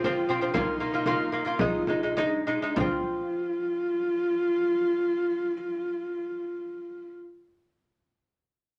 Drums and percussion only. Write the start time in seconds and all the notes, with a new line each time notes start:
0.04 frame drum
0.54 frame drum
0.93 frame drum
1.06 frame drum
1.32 frame drum
1.59 frame drum
1.87 frame drum
2.02 frame drum
2.17 frame drum
2.77 frame drum